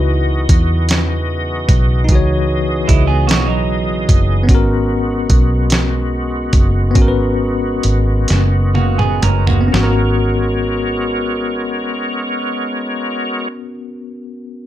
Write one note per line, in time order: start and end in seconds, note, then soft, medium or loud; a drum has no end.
0.00 0.45 C#2 loud
0.00 4.45 C#3 medium
0.00 4.46 E3 medium
0.00 9.69 B3 medium
0.00 2.03 D#4 medium
0.00 2.05 E4 medium
0.00 2.07 F#4 medium
0.00 2.12 B4 medium
0.00 4.45 D#5 medium
0.49 1.65 E2 medium
0.49 kick medium
0.49 closed hi-hat medium
0.89 snare loud
0.89 closed hi-hat medium
1.69 2.09 B1 loud
1.69 kick medium
1.69 closed hi-hat medium
2.04 4.44 E3 medium
2.04 4.43 D#4 medium
2.09 2.85 C#2 loud
2.09 4.46 F#4 medium
2.09 4.47 G#4 medium
2.09 kick loud
2.09 closed hi-hat medium
2.15 4.48 C#5 medium
2.88 3.29 C#2 medium
2.88 3.08 G#3 medium
2.88 3.07 E4 medium
2.88 kick medium
2.88 closed hi-hat medium
3.07 3.27 B3 medium
3.07 3.27 G#4 medium
3.27 4.05 B1 loud
3.27 3.47 A#3 medium
3.27 3.47 F#4 medium
3.27 snare loud
3.27 closed hi-hat medium
3.48 4.44 F#3 medium
3.48 4.44 D#4 medium
4.09 4.49 F#1 medium
4.09 kick loud
4.09 closed hi-hat medium
4.43 6.89 B3 medium
4.43 6.91 C#4 medium
4.49 5.26 G#1 medium
4.49 9.68 G#3 medium
4.49 9.68 F#4 medium
4.49 6.93 F#4 medium
4.49 kick loud
4.49 closed hi-hat medium
4.55 6.95 A#4 medium
5.30 6.50 B1 medium
5.30 kick medium
5.30 closed hi-hat medium
5.70 snare loud
5.70 closed hi-hat medium
6.53 6.96 F#1 medium
6.53 kick medium
6.53 closed hi-hat medium
6.91 9.60 B3 medium
6.91 9.67 C#4 medium
6.95 7.80 G#1 loud
6.95 9.69 F#4 medium
6.95 kick loud
6.95 closed hi-hat medium
7.02 7.06 A#4 medium
7.08 9.74 B4 medium
7.83 8.25 G#1 medium
7.83 closed hi-hat medium
8.28 9.20 F#1 loud
8.28 snare medium
8.28 closed hi-hat medium
8.75 8.98 A#3 medium
8.75 8.97 F#4 medium
8.75 high tom medium
8.98 9.22 B3 medium
8.98 9.21 G#4 medium
8.98 mid tom medium
9.22 9.69 F#1 loud
9.22 9.47 C#4 medium
9.22 9.46 A#4 medium
9.22 closed hi-hat medium
9.22 mid tom loud
9.47 9.95 A#3 medium
9.47 9.94 F#4 medium
9.47 floor tom medium
9.61 13.54 B3 medium
9.68 13.62 C#4 medium
9.72 13.67 G#1 loud
9.72 13.48 G#3 medium
9.72 13.48 B3 medium
9.72 13.48 F#4 medium
9.72 13.69 F#4 medium
9.72 13.48 A#4 medium
9.72 13.48 C#5 medium
9.72 snare loud
9.83 13.77 A#4 medium